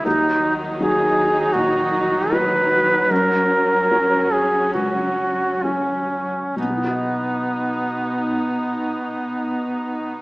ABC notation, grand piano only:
X:1
M:4/4
L:1/8
Q:1/4=70
K:B
V:1 name="Grand piano"
D,,2 [F,DF]2 A,,2 [F,DF]2 | F,,2 [F,CF]2 C,,2 [F,CF]2 | [B,,,B,,F,DFd]8 |]